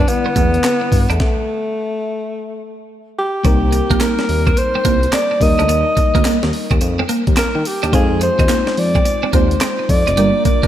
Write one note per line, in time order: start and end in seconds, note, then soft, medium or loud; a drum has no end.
0.00 1.16 D3 medium
0.00 1.16 G3 medium
0.00 1.17 B3 medium
0.00 0.10 D4 loud
0.00 1.17 E4 medium
0.08 1.10 B3 loud
0.08 muted clean electric guitar stroke soft
0.08 closed hi-hat medium
0.08 tambourine medium
0.26 0.33 B3 medium
0.36 0.58 E2 medium
0.36 0.48 A3 medium
0.36 kick medium
0.36 closed hi-hat medium
0.36 tambourine medium
0.54 closed hi-hat medium
0.64 0.76 B3 medium
0.64 snare loud
0.64 clap medium
0.64 closed hi-hat medium
0.64 tambourine loud
0.81 muted clean electric guitar stroke soft
0.92 1.06 G2 loud
0.92 kick medium
0.92 open hi-hat medium
0.92 tambourine medium
1.10 1.18 E2 loud
1.10 2.85 A3 loud
1.10 1.16 D4 medium
1.10 closed hi-hat medium
1.20 kick loud
1.20 snare medium
3.18 4.04 G4 loud
3.44 3.81 C2 loud
3.44 5.36 G3 medium
3.44 5.37 A#3 medium
3.44 3.57 C4 medium
3.44 5.37 C4 medium
3.44 5.37 D#4 medium
3.44 5.38 A#4 medium
3.44 kick loud
3.44 closed hi-hat medium
3.44 tambourine medium
3.72 muted clean electric guitar stroke soft
3.72 closed hi-hat medium
3.72 tambourine medium
3.90 3.98 A#1 medium
3.90 3.97 A#3 medium
3.90 kick loud
3.90 closed hi-hat medium
4.00 4.12 A#3 medium
4.00 4.60 A#4 loud
4.00 snare loud
4.00 clap loud
4.00 closed hi-hat medium
4.00 tambourine loud
4.19 muted clean electric guitar stroke soft
4.19 snare medium
4.29 4.51 D#2 medium
4.29 open hi-hat medium
4.47 4.53 C4 medium
4.47 kick medium
4.47 closed hi-hat soft
4.57 5.16 C5 loud
4.57 muted clean electric guitar stroke soft
4.57 closed hi-hat medium
4.57 tambourine medium
4.75 4.82 C4 medium
4.85 5.07 C2 loud
4.85 4.97 A#3 medium
4.85 kick loud
4.85 closed hi-hat medium
4.85 tambourine medium
5.03 closed hi-hat medium
5.13 5.25 C4 medium
5.13 5.44 D5 loud
5.13 snare loud
5.13 clap loud
5.13 closed hi-hat loud
5.13 tambourine medium
5.31 muted clean electric guitar stroke soft
5.40 5.55 D#2 loud
5.40 7.61 G3 medium
5.40 7.61 A#3 medium
5.40 7.61 D#4 medium
5.40 7.62 A#4 medium
5.40 6.54 D#5 loud
5.40 kick medium
5.40 open hi-hat medium
5.40 tambourine medium
5.59 5.67 D2 loud
5.59 5.66 D4 medium
5.59 closed hi-hat medium
5.69 5.83 D#2 loud
5.69 5.81 D#4 medium
5.69 closed hi-hat medium
5.69 tambourine medium
5.97 muted clean electric guitar stroke soft
5.97 kick loud
5.97 closed hi-hat medium
5.97 tambourine medium
6.15 6.23 D2 medium
6.15 6.21 A#3 medium
6.15 kick medium
6.15 closed hi-hat medium
6.25 6.37 A#3 medium
6.25 snare loud
6.25 clap loud
6.25 closed hi-hat medium
6.25 tambourine loud
6.43 6.51 D#2 loud
6.43 muted clean electric guitar stroke soft
6.43 snare medium
6.53 open hi-hat medium
6.71 6.79 D#2 loud
6.71 6.78 C4 medium
6.71 kick loud
6.71 closed hi-hat soft
6.81 7.03 F2 loud
6.81 muted clean electric guitar stroke soft
6.81 closed hi-hat medium
6.81 tambourine medium
6.99 7.06 C4 medium
7.09 7.21 A#3 loud
7.09 closed hi-hat medium
7.09 tambourine medium
7.27 7.35 D#2 medium
7.27 kick loud
7.27 closed hi-hat medium
7.37 7.49 C4 medium
7.37 7.69 A#4 loud
7.37 snare loud
7.37 clap medium
7.37 closed hi-hat loud
7.37 tambourine loud
7.55 7.63 D#3 medium
7.55 muted clean electric guitar stroke soft
7.65 7.94 G4 medium
7.65 open hi-hat medium
7.65 tambourine medium
7.83 7.91 D#2 medium
7.83 7.90 D4 medium
7.83 closed hi-hat medium
7.92 8.29 F2 loud
7.92 9.30 G#3 medium
7.92 9.30 C4 medium
7.92 9.30 D#4 medium
7.92 8.05 F4 medium
7.92 9.31 F4 medium
7.92 8.20 G#4 medium
7.92 9.31 C5 medium
7.92 kick loud
7.92 closed hi-hat medium
7.92 tambourine medium
8.21 8.80 C5 loud
8.21 muted clean electric guitar stroke soft
8.21 closed hi-hat medium
8.21 tambourine medium
8.39 8.47 D#2 medium
8.39 8.46 D#4 medium
8.39 kick loud
8.39 closed hi-hat medium
8.49 8.61 A#3 medium
8.49 snare loud
8.49 clap loud
8.49 closed hi-hat medium
8.49 tambourine loud
8.67 muted clean electric guitar stroke soft
8.67 snare medium
8.77 8.99 F2 medium
8.77 9.34 D5 loud
8.77 open hi-hat medium
8.95 9.02 C4 medium
8.95 kick medium
8.95 closed hi-hat soft
9.05 muted clean electric guitar stroke soft
9.05 closed hi-hat medium
9.05 tambourine medium
9.23 9.30 C4 medium
9.33 9.55 D#2 loud
9.33 10.17 G#3 medium
9.33 9.45 A#3 loud
9.33 10.18 C4 soft
9.33 10.18 D#4 soft
9.33 10.17 F4 soft
9.33 10.18 C5 medium
9.33 9.60 C5 medium
9.33 kick medium
9.33 closed hi-hat medium
9.33 tambourine medium
9.51 closed hi-hat medium
9.61 9.73 C4 medium
9.61 9.92 C5 loud
9.61 snare loud
9.61 clap loud
9.61 closed hi-hat medium
9.61 tambourine loud
9.79 muted clean electric guitar stroke soft
9.89 10.04 F2 loud
9.89 10.45 D5 loud
9.89 kick medium
9.89 open hi-hat medium
9.89 tambourine medium
10.07 10.15 F1 loud
10.07 10.14 D#4 medium
10.07 closed hi-hat medium
10.17 10.32 G1 loud
10.17 10.67 G3 medium
10.17 10.29 G3 medium
10.17 10.67 A#3 medium
10.17 10.67 D4 medium
10.17 10.67 F4 medium
10.17 10.67 A#4 medium
10.17 closed hi-hat medium
10.17 tambourine medium
10.45 10.67 D5 loud
10.45 muted clean electric guitar stroke soft
10.45 kick loud
10.45 closed hi-hat medium
10.45 tambourine medium
10.63 10.67 F1 loud
10.63 10.67 A#3 medium
10.63 kick loud
10.63 closed hi-hat medium